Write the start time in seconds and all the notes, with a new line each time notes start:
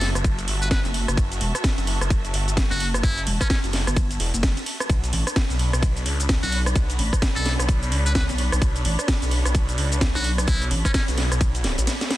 Already playing: F#1 F#4 E5 A5
0.01 snare, open hi-hat
0.15 F#1, cross-stick, closed hi-hat, shaker
0.24 kick, closed hi-hat, ride, shaker
0.39 closed hi-hat, shaker
0.48 G1, open hi-hat
0.62 B4, closed hi-hat, shaker
0.71 B4, kick, snare, closed hi-hat, ride, shaker
0.85 F#1, closed hi-hat, shaker
0.94 open hi-hat
1.08 F#1, cross-stick, closed hi-hat, shaker
1.17 F#1, kick, closed hi-hat, ride, shaker
1.32 closed hi-hat, shaker
1.41 E1, open hi-hat
1.55 cross-stick, closed hi-hat, shaker
1.64 kick, snare, closed hi-hat, ride, shaker
1.78 F#1, closed hi-hat, shaker
1.87 open hi-hat
2.01 F#1, cross-stick, closed hi-hat, shaker
2.10 kick, closed hi-hat, ride, shaker
2.25 closed hi-hat, shaker
2.34 G1, open hi-hat
2.48 closed hi-hat, shaker
2.57 kick, snare, closed hi-hat, ride, shaker
2.71 F#1 F#4, closed hi-hat, shaker
2.80 open hi-hat
2.94 cross-stick, closed hi-hat, shaker
3.03 F#1 E4, kick, closed hi-hat, ride, shaker
3.18 closed hi-hat, shaker
3.27 E1, open hi-hat
3.41 C#4, kick, cross-stick, closed hi-hat, shaker
3.50 C#4, kick, snare, closed hi-hat, ride, shaker
3.64 F#1, closed hi-hat, shaker
3.73 snare, open hi-hat
3.87 G1, cross-stick, closed hi-hat, shaker
3.96 kick, closed hi-hat, ride, shaker
4.11 closed hi-hat, shaker
4.20 E1, open hi-hat
4.34 F#1, closed hi-hat, shaker
4.43 kick, snare, closed hi-hat, ride, shaker
4.57 closed hi-hat, shaker
4.66 open hi-hat
4.80 cross-stick, closed hi-hat, shaker
4.89 B1 D4, kick, closed hi-hat, ride, shaker
4.95 C#5
5.04 closed hi-hat, shaker
5.13 A1, open hi-hat
5.27 cross-stick, closed hi-hat, shaker
5.36 kick, snare, closed hi-hat, ride, shaker
5.46 B1 B5, closed hi-hat
5.51 shaker
5.59 open hi-hat
5.73 B1, cross-stick, closed hi-hat, shaker
5.83 kick, closed hi-hat, ride, shaker
5.97 closed hi-hat, shaker
6.06 C#2, open hi-hat
6.20 closed hi-hat, shaker
6.29 kick, snare, closed hi-hat, ride, shaker
6.43 B1 F#4, closed hi-hat, shaker
6.52 open hi-hat
6.66 cross-stick, closed hi-hat, shaker
6.76 B1, kick, closed hi-hat, ride, shaker
6.90 closed hi-hat, shaker
6.99 A1, open hi-hat
7.13 kick, cross-stick, closed hi-hat, shaker
7.22 kick, snare, closed hi-hat, ride, shaker
7.36 B1 A4, closed hi-hat, shaker
7.46 snare, open hi-hat
7.59 B1, cross-stick, closed hi-hat, shaker
7.69 kick, closed hi-hat, ride, shaker
7.83 closed hi-hat, shaker
7.92 C#2, open hi-hat
8.06 B4, closed hi-hat, shaker
8.15 B4, kick, snare, closed hi-hat, ride, shaker
8.29 B1, closed hi-hat, shaker
8.38 open hi-hat
8.52 B1, cross-stick, closed hi-hat, shaker
8.62 B1, kick, closed hi-hat, ride, shaker
8.76 closed hi-hat, shaker
8.85 A1, open hi-hat
8.99 cross-stick, closed hi-hat, shaker
9.08 kick, snare, closed hi-hat, ride, shaker
9.22 B1, closed hi-hat, shaker
9.31 open hi-hat
9.45 B1, cross-stick, closed hi-hat, shaker
9.55 kick, closed hi-hat, ride, shaker
9.69 closed hi-hat, shaker
9.78 C#2, open hi-hat
9.92 closed hi-hat, shaker
10.01 kick, snare, closed hi-hat, ride, shaker
10.15 B1 F#4, closed hi-hat, shaker
10.24 open hi-hat
10.38 cross-stick, closed hi-hat, shaker
10.48 B1 E4, kick, closed hi-hat, ride, shaker
10.62 closed hi-hat, shaker
10.71 A1, open hi-hat
10.85 C#4, kick, cross-stick, closed hi-hat, shaker
10.94 C#4, kick, snare, closed hi-hat, ride, shaker
11.08 B1, closed hi-hat, shaker
11.18 snare, open hi-hat
11.31 B1, cross-stick, closed hi-hat, shaker
11.41 kick, closed hi-hat, ride, shaker
11.55 closed hi-hat, shaker
11.64 snare, open hi-hat
11.78 A1, closed hi-hat, shaker
11.87 snare, closed hi-hat, ride, shaker
12.01 snare, closed hi-hat, shaker
12.11 snare, open hi-hat